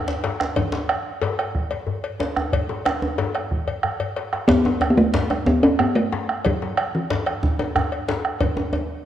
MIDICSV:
0, 0, Header, 1, 5, 480
1, 0, Start_track
1, 0, Key_signature, 3, "major"
1, 0, Tempo, 326619
1, 830, Time_signature, 12, 3, 24, 8
1, 13303, End_track
2, 0, Start_track
2, 0, Title_t, "Talking drum"
2, 0, Program_c, 0, 116
2, 6584, Note_on_c, 0, 59, 91
2, 7207, Note_off_c, 0, 59, 0
2, 7207, Note_on_c, 0, 59, 57
2, 7312, Note_on_c, 0, 57, 85
2, 7334, Note_off_c, 0, 59, 0
2, 8029, Note_off_c, 0, 57, 0
2, 8038, Note_on_c, 0, 59, 85
2, 8261, Note_off_c, 0, 59, 0
2, 8277, Note_on_c, 0, 61, 78
2, 8501, Note_off_c, 0, 61, 0
2, 8520, Note_on_c, 0, 59, 77
2, 8749, Note_on_c, 0, 57, 85
2, 8771, Note_off_c, 0, 59, 0
2, 9473, Note_off_c, 0, 57, 0
2, 9490, Note_on_c, 0, 54, 82
2, 10209, Note_on_c, 0, 52, 65
2, 10232, Note_off_c, 0, 54, 0
2, 10923, Note_off_c, 0, 52, 0
2, 13303, End_track
3, 0, Start_track
3, 0, Title_t, "Bombo"
3, 587, Note_on_c, 9, 37, 69
3, 733, Note_off_c, 9, 37, 0
3, 823, Note_on_c, 9, 43, 84
3, 970, Note_off_c, 9, 43, 0
3, 1310, Note_on_c, 9, 37, 85
3, 1457, Note_off_c, 9, 37, 0
3, 2040, Note_on_c, 9, 37, 64
3, 2187, Note_off_c, 9, 37, 0
3, 2274, Note_on_c, 9, 37, 28
3, 2274, Note_on_c, 9, 43, 88
3, 2421, Note_off_c, 9, 37, 0
3, 2421, Note_off_c, 9, 43, 0
3, 3475, Note_on_c, 9, 37, 73
3, 3622, Note_off_c, 9, 37, 0
3, 3713, Note_on_c, 9, 43, 90
3, 3860, Note_off_c, 9, 43, 0
3, 4204, Note_on_c, 9, 37, 84
3, 4351, Note_off_c, 9, 37, 0
3, 4927, Note_on_c, 9, 37, 62
3, 5074, Note_off_c, 9, 37, 0
3, 5158, Note_on_c, 9, 37, 26
3, 5158, Note_on_c, 9, 43, 90
3, 5305, Note_off_c, 9, 37, 0
3, 5305, Note_off_c, 9, 43, 0
3, 5405, Note_on_c, 9, 37, 25
3, 5552, Note_off_c, 9, 37, 0
3, 5632, Note_on_c, 9, 37, 79
3, 5779, Note_off_c, 9, 37, 0
3, 6363, Note_on_c, 9, 37, 62
3, 6510, Note_off_c, 9, 37, 0
3, 6602, Note_on_c, 9, 43, 78
3, 6749, Note_off_c, 9, 43, 0
3, 7080, Note_on_c, 9, 37, 79
3, 7227, Note_off_c, 9, 37, 0
3, 7804, Note_on_c, 9, 37, 60
3, 7951, Note_off_c, 9, 37, 0
3, 8041, Note_on_c, 9, 37, 29
3, 8041, Note_on_c, 9, 43, 83
3, 8188, Note_off_c, 9, 37, 0
3, 8188, Note_off_c, 9, 43, 0
3, 8509, Note_on_c, 9, 37, 89
3, 8656, Note_off_c, 9, 37, 0
3, 9244, Note_on_c, 9, 37, 74
3, 9390, Note_off_c, 9, 37, 0
3, 9481, Note_on_c, 9, 43, 94
3, 9628, Note_off_c, 9, 43, 0
3, 9953, Note_on_c, 9, 37, 88
3, 10100, Note_off_c, 9, 37, 0
3, 10681, Note_on_c, 9, 37, 66
3, 10828, Note_off_c, 9, 37, 0
3, 10923, Note_on_c, 9, 37, 29
3, 10923, Note_on_c, 9, 43, 92
3, 11070, Note_off_c, 9, 37, 0
3, 11070, Note_off_c, 9, 43, 0
3, 11401, Note_on_c, 9, 37, 85
3, 11548, Note_off_c, 9, 37, 0
3, 12122, Note_on_c, 9, 37, 76
3, 12269, Note_off_c, 9, 37, 0
3, 12353, Note_on_c, 9, 43, 92
3, 12500, Note_off_c, 9, 43, 0
3, 13303, End_track
4, 0, Start_track
4, 0, Title_t, "Djembe"
4, 111, Note_on_c, 9, 62, 64
4, 258, Note_off_c, 9, 62, 0
4, 346, Note_on_c, 9, 62, 73
4, 346, Note_on_c, 9, 63, 70
4, 493, Note_off_c, 9, 62, 0
4, 493, Note_off_c, 9, 63, 0
4, 597, Note_on_c, 9, 62, 67
4, 743, Note_off_c, 9, 62, 0
4, 825, Note_on_c, 9, 63, 74
4, 835, Note_on_c, 9, 62, 21
4, 835, Note_on_c, 9, 64, 70
4, 972, Note_off_c, 9, 63, 0
4, 982, Note_off_c, 9, 62, 0
4, 982, Note_off_c, 9, 64, 0
4, 1061, Note_on_c, 9, 62, 67
4, 1067, Note_off_c, 9, 62, 0
4, 1067, Note_on_c, 9, 62, 55
4, 1067, Note_on_c, 9, 63, 54
4, 1214, Note_off_c, 9, 62, 0
4, 1214, Note_off_c, 9, 63, 0
4, 1785, Note_on_c, 9, 62, 67
4, 1785, Note_on_c, 9, 63, 68
4, 1785, Note_on_c, 9, 64, 69
4, 1932, Note_off_c, 9, 62, 0
4, 1932, Note_off_c, 9, 63, 0
4, 1932, Note_off_c, 9, 64, 0
4, 2518, Note_on_c, 9, 63, 48
4, 2665, Note_off_c, 9, 63, 0
4, 2746, Note_on_c, 9, 64, 64
4, 2893, Note_off_c, 9, 64, 0
4, 3229, Note_on_c, 9, 63, 59
4, 3239, Note_on_c, 9, 62, 69
4, 3376, Note_off_c, 9, 63, 0
4, 3386, Note_off_c, 9, 62, 0
4, 3480, Note_on_c, 9, 63, 68
4, 3627, Note_off_c, 9, 63, 0
4, 3714, Note_on_c, 9, 64, 56
4, 3861, Note_off_c, 9, 64, 0
4, 3958, Note_on_c, 9, 62, 46
4, 3958, Note_on_c, 9, 63, 48
4, 4105, Note_off_c, 9, 62, 0
4, 4105, Note_off_c, 9, 63, 0
4, 4204, Note_on_c, 9, 62, 70
4, 4351, Note_off_c, 9, 62, 0
4, 4442, Note_on_c, 9, 63, 72
4, 4589, Note_off_c, 9, 63, 0
4, 4677, Note_on_c, 9, 62, 67
4, 4677, Note_on_c, 9, 63, 65
4, 4677, Note_on_c, 9, 64, 62
4, 4824, Note_off_c, 9, 62, 0
4, 4824, Note_off_c, 9, 63, 0
4, 4824, Note_off_c, 9, 64, 0
4, 4915, Note_on_c, 9, 62, 20
4, 5062, Note_off_c, 9, 62, 0
4, 5393, Note_on_c, 9, 64, 38
4, 5540, Note_off_c, 9, 64, 0
4, 5640, Note_on_c, 9, 64, 44
4, 5787, Note_off_c, 9, 64, 0
4, 5879, Note_on_c, 9, 64, 47
4, 6026, Note_off_c, 9, 64, 0
4, 6124, Note_on_c, 9, 62, 50
4, 6271, Note_off_c, 9, 62, 0
4, 6368, Note_on_c, 9, 62, 51
4, 6515, Note_off_c, 9, 62, 0
4, 6599, Note_on_c, 9, 62, 93
4, 6610, Note_off_c, 9, 62, 0
4, 6610, Note_on_c, 9, 62, 21
4, 6610, Note_on_c, 9, 64, 69
4, 6757, Note_off_c, 9, 62, 0
4, 6757, Note_off_c, 9, 64, 0
4, 6837, Note_on_c, 9, 63, 69
4, 6847, Note_off_c, 9, 63, 0
4, 6847, Note_on_c, 9, 62, 57
4, 6847, Note_on_c, 9, 63, 56
4, 6994, Note_off_c, 9, 62, 0
4, 6994, Note_off_c, 9, 63, 0
4, 7068, Note_on_c, 9, 63, 68
4, 7215, Note_off_c, 9, 63, 0
4, 7320, Note_on_c, 9, 63, 67
4, 7467, Note_off_c, 9, 63, 0
4, 7552, Note_on_c, 9, 62, 89
4, 7559, Note_off_c, 9, 62, 0
4, 7559, Note_on_c, 9, 62, 70
4, 7559, Note_on_c, 9, 63, 67
4, 7559, Note_on_c, 9, 64, 68
4, 7706, Note_off_c, 9, 62, 0
4, 7706, Note_off_c, 9, 63, 0
4, 7706, Note_off_c, 9, 64, 0
4, 7794, Note_on_c, 9, 63, 68
4, 7941, Note_off_c, 9, 63, 0
4, 8032, Note_on_c, 9, 63, 76
4, 8179, Note_off_c, 9, 63, 0
4, 8277, Note_on_c, 9, 62, 52
4, 8277, Note_on_c, 9, 63, 67
4, 8424, Note_off_c, 9, 62, 0
4, 8424, Note_off_c, 9, 63, 0
4, 8507, Note_on_c, 9, 64, 68
4, 8654, Note_off_c, 9, 64, 0
4, 8999, Note_on_c, 9, 62, 62
4, 8999, Note_on_c, 9, 63, 64
4, 9146, Note_off_c, 9, 62, 0
4, 9146, Note_off_c, 9, 63, 0
4, 9476, Note_on_c, 9, 62, 19
4, 9476, Note_on_c, 9, 64, 62
4, 9623, Note_off_c, 9, 62, 0
4, 9623, Note_off_c, 9, 64, 0
4, 9730, Note_on_c, 9, 62, 49
4, 9730, Note_on_c, 9, 63, 48
4, 9877, Note_off_c, 9, 62, 0
4, 9877, Note_off_c, 9, 63, 0
4, 10440, Note_on_c, 9, 62, 74
4, 10444, Note_off_c, 9, 62, 0
4, 10444, Note_on_c, 9, 62, 65
4, 10444, Note_on_c, 9, 63, 64
4, 10444, Note_on_c, 9, 64, 61
4, 10591, Note_off_c, 9, 62, 0
4, 10591, Note_off_c, 9, 63, 0
4, 10591, Note_off_c, 9, 64, 0
4, 10919, Note_on_c, 9, 63, 76
4, 11066, Note_off_c, 9, 63, 0
4, 11159, Note_on_c, 9, 63, 67
4, 11161, Note_off_c, 9, 63, 0
4, 11161, Note_on_c, 9, 62, 50
4, 11161, Note_on_c, 9, 63, 48
4, 11308, Note_off_c, 9, 62, 0
4, 11308, Note_off_c, 9, 63, 0
4, 11397, Note_on_c, 9, 64, 63
4, 11409, Note_on_c, 9, 63, 69
4, 11544, Note_off_c, 9, 64, 0
4, 11556, Note_off_c, 9, 63, 0
4, 11883, Note_on_c, 9, 62, 70
4, 11886, Note_off_c, 9, 62, 0
4, 11886, Note_on_c, 9, 62, 64
4, 11886, Note_on_c, 9, 63, 66
4, 12033, Note_off_c, 9, 62, 0
4, 12033, Note_off_c, 9, 63, 0
4, 12353, Note_on_c, 9, 63, 73
4, 12355, Note_on_c, 9, 62, 20
4, 12355, Note_on_c, 9, 64, 65
4, 12500, Note_off_c, 9, 63, 0
4, 12502, Note_off_c, 9, 62, 0
4, 12502, Note_off_c, 9, 64, 0
4, 12591, Note_on_c, 9, 63, 69
4, 12593, Note_off_c, 9, 63, 0
4, 12593, Note_on_c, 9, 62, 50
4, 12593, Note_on_c, 9, 63, 50
4, 12740, Note_off_c, 9, 62, 0
4, 12740, Note_off_c, 9, 63, 0
4, 12827, Note_on_c, 9, 63, 68
4, 12974, Note_off_c, 9, 63, 0
4, 13303, End_track
5, 0, Start_track
5, 0, Title_t, "Drums"
5, 112, Note_on_c, 9, 56, 42
5, 259, Note_off_c, 9, 56, 0
5, 347, Note_on_c, 9, 56, 39
5, 494, Note_off_c, 9, 56, 0
5, 827, Note_on_c, 9, 56, 53
5, 974, Note_off_c, 9, 56, 0
5, 1314, Note_on_c, 9, 56, 40
5, 1461, Note_off_c, 9, 56, 0
5, 1804, Note_on_c, 9, 56, 43
5, 1951, Note_off_c, 9, 56, 0
5, 2042, Note_on_c, 9, 56, 41
5, 2189, Note_off_c, 9, 56, 0
5, 2511, Note_on_c, 9, 56, 44
5, 2658, Note_off_c, 9, 56, 0
5, 2999, Note_on_c, 9, 56, 44
5, 3146, Note_off_c, 9, 56, 0
5, 3240, Note_on_c, 9, 56, 46
5, 3387, Note_off_c, 9, 56, 0
5, 3722, Note_on_c, 9, 56, 58
5, 3869, Note_off_c, 9, 56, 0
5, 4195, Note_on_c, 9, 56, 47
5, 4341, Note_off_c, 9, 56, 0
5, 4675, Note_on_c, 9, 56, 43
5, 4822, Note_off_c, 9, 56, 0
5, 4916, Note_on_c, 9, 56, 42
5, 5063, Note_off_c, 9, 56, 0
5, 5402, Note_on_c, 9, 56, 44
5, 5549, Note_off_c, 9, 56, 0
5, 5881, Note_on_c, 9, 56, 45
5, 6028, Note_off_c, 9, 56, 0
5, 6124, Note_on_c, 9, 56, 43
5, 6271, Note_off_c, 9, 56, 0
5, 6597, Note_on_c, 9, 56, 59
5, 6744, Note_off_c, 9, 56, 0
5, 7070, Note_on_c, 9, 56, 43
5, 7217, Note_off_c, 9, 56, 0
5, 7561, Note_on_c, 9, 56, 47
5, 7708, Note_off_c, 9, 56, 0
5, 7794, Note_on_c, 9, 56, 42
5, 7941, Note_off_c, 9, 56, 0
5, 8277, Note_on_c, 9, 56, 46
5, 8423, Note_off_c, 9, 56, 0
5, 8756, Note_on_c, 9, 56, 45
5, 8903, Note_off_c, 9, 56, 0
5, 9471, Note_on_c, 9, 56, 59
5, 9618, Note_off_c, 9, 56, 0
5, 9956, Note_on_c, 9, 56, 42
5, 10103, Note_off_c, 9, 56, 0
5, 10438, Note_on_c, 9, 56, 42
5, 10585, Note_off_c, 9, 56, 0
5, 10674, Note_on_c, 9, 56, 44
5, 10821, Note_off_c, 9, 56, 0
5, 11160, Note_on_c, 9, 56, 41
5, 11307, Note_off_c, 9, 56, 0
5, 11643, Note_on_c, 9, 56, 39
5, 11790, Note_off_c, 9, 56, 0
5, 11882, Note_on_c, 9, 56, 37
5, 12029, Note_off_c, 9, 56, 0
5, 12353, Note_on_c, 9, 56, 51
5, 12500, Note_off_c, 9, 56, 0
5, 12831, Note_on_c, 9, 56, 37
5, 12978, Note_off_c, 9, 56, 0
5, 13303, End_track
0, 0, End_of_file